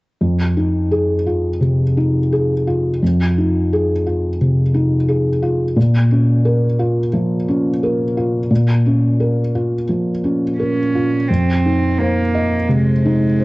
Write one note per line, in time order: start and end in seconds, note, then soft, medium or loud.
0.21 1.57 F2 soft
0.57 1.13 D#4 soft
0.91 1.47 G#4 soft
1.27 1.83 F4 soft
1.61 2.17 C3 soft
1.97 2.52 D#4 soft
2.32 2.87 G#4 soft
2.67 3.22 F4 soft
3.02 4.36 F2 soft
3.38 3.92 D#4 soft
3.73 4.27 G#4 soft
4.06 4.61 F4 soft
4.41 4.95 C3 soft
4.74 5.29 D#4 soft
5.08 5.63 G#4 soft
5.42 5.76 F4 soft
5.76 7.09 A#2 soft
6.11 6.65 C#4 soft
6.45 6.99 A#4 soft
6.79 7.34 F4 soft
7.13 7.68 F3 soft
7.48 8.03 C#4 soft
7.83 8.37 A#4 soft
8.17 8.71 F4 soft
8.51 9.84 A#2 soft
8.86 9.40 C#4 soft
9.20 9.74 A#4 soft
9.55 10.09 F4 soft
9.89 10.44 F3 soft
10.24 10.79 C#4 soft
10.58 11.29 C#4 soft
10.58 11.15 A#4 soft
10.95 11.29 F4 soft
11.28 12.65 F2 soft
11.28 12.00 C4 soft
11.66 12.20 D#4 soft
11.99 12.69 A#3 soft
11.99 12.55 C5 soft
12.35 12.90 D#5 soft
12.68 13.24 C3 soft
12.68 13.45 G#3 medium
13.05 13.45 D#4 soft
13.40 13.45 C5 soft